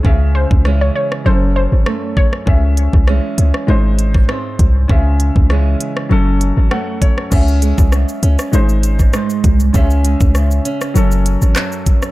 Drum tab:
CC |----------------|----------------|----------------|x---------------|
HH |----------------|--x---x---x---x-|--x---x---x---x-|--x---x---x---x-|
SH |----------------|----------------|----------------|xxxxxxxxxxxxxxxx|
CP |----------------|----------------|----------------|----------------|
SD |----r--r----r--r|----r--r----r---|----r--r----r--r|----r--r----r---|
BD |o--o----------o-|o--o-------o--o-|o--o----------o-|o--o-------o--o-|

CC |----------------|
HH |--x---x---x---x-|
SH |xxxxxxxxxxxxxxxx|
CP |------------x---|
SD |----r--r----r--r|
BD |o--o----------o-|